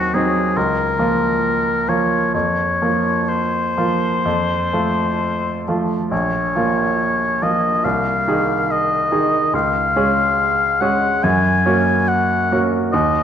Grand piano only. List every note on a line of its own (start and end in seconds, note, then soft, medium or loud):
0.00 0.58 D#2 soft
0.00 0.10 F#3 soft
0.00 0.10 C4 soft
0.00 0.11 D#4 soft
0.14 0.52 F#3 soft
0.14 0.52 C4 soft
0.14 0.53 D#4 soft
0.56 0.98 C#2 soft
0.99 1.83 F3 soft
0.99 1.84 A#3 soft
0.99 1.84 F4 soft
1.89 2.30 F3 soft
1.89 2.30 A#3 soft
1.89 2.31 F4 soft
2.34 2.80 F2 soft
2.82 3.73 F3 soft
2.82 3.73 A#3 soft
2.82 3.74 F4 soft
3.77 4.21 F3 soft
3.77 4.21 A#3 soft
3.77 4.21 F4 soft
4.25 4.71 F2 soft
4.73 5.62 F3 soft
4.73 5.63 A3 soft
4.73 5.63 F4 soft
5.68 6.08 F3 soft
5.68 6.09 A3 soft
5.68 6.09 F4 soft
6.11 6.54 A#1 soft
6.56 7.38 F3 soft
6.56 7.38 A#3 soft
6.56 7.38 F4 soft
7.42 7.80 F3 soft
7.42 7.81 A#3 soft
7.42 7.81 F4 soft
7.85 8.26 C2 soft
8.28 9.08 D#3 soft
8.28 9.08 D#4 soft
8.28 9.08 G#4 soft
9.12 9.50 D#3 soft
9.12 9.50 D#4 soft
9.12 9.50 G#4 soft
9.53 9.94 C#2 soft
9.96 10.77 G#3 soft
9.96 10.78 C#4 soft
9.96 10.78 G#4 soft
10.81 11.20 G#3 soft
10.81 11.20 C#4 soft
10.81 11.20 G#4 soft
11.24 11.64 F#2 soft
11.66 12.47 A#3 soft
11.66 12.46 C#4 soft
11.66 12.47 F#4 soft
12.52 12.89 A#3 soft
12.52 12.89 C#4 soft
12.52 12.89 F#4 soft
12.94 13.23 D#2 soft